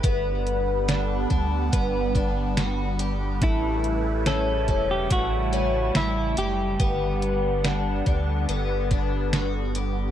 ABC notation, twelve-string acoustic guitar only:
X:1
M:4/4
L:1/8
Q:1/4=71
K:Glyd
V:1 name="Twelve-string acoustic guitar"
B,2 D D B, D F G | A,2 C C A, C E G | B,2 D D B, D F G |]